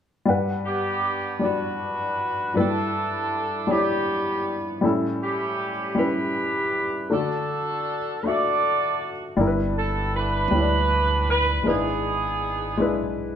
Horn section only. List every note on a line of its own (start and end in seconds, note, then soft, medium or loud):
0.66 1.76 B3 soft
0.66 1.41 D4 soft
0.66 1.38 G4 medium
1.42 2.52 D4 medium
1.42 2.52 F#4 medium
1.42 2.52 B4 medium
2.56 3.66 D4 medium
2.56 3.66 E4 soft
2.56 3.70 A4 medium
3.71 4.80 B3 soft
3.71 4.80 D4 soft
3.71 4.55 G4 medium
5.22 6.32 C#4 soft
5.22 5.97 E4 soft
5.22 5.93 G4 medium
5.97 7.07 E4 medium
5.97 7.07 G4 medium
5.97 7.11 B4 medium
7.11 8.21 D4 medium
7.11 8.21 F#4 medium
7.11 8.25 A4 medium
8.26 9.35 F#4 medium
8.26 9.35 A4 medium
8.26 9.11 D5 medium
9.77 10.12 A4 medium
10.16 11.25 D4 medium
10.16 11.25 E4 medium
10.16 11.29 B4 medium
11.30 11.64 B4 medium
11.67 13.14 B3 soft
11.67 13.14 D4 soft
11.67 13.18 G#4 medium